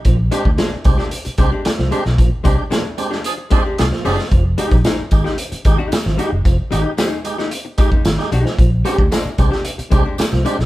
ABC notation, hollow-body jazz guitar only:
X:1
M:4/4
L:1/16
Q:1/4=113
K:Bbmix
V:1 name="Hollow-body jazz guitar"
z2 [A,DG] z [A,DA] z2 [A,DG] z2 [A,DG] [A,DG] z2 [A,DG] z | z2 [A,DG] z [A,DA] z2 [A,DG] z2 [A,DG] [A,DG] z2 [A,DG]2 | z2 [A,EG]2 [A,EA] z2 [A,EG] z3 [A,EG]2 z [A,EG]2 | z2 [A,EG]2 [A,EA]2 z [A,EG] z2 [A,EG] [A,EG] z2 [A,EG]2 |
z2 [A,DG]2 [A,DA] z2 [A,DG] z2 [A,DG] [A,DG] z2 [A,DG] z |]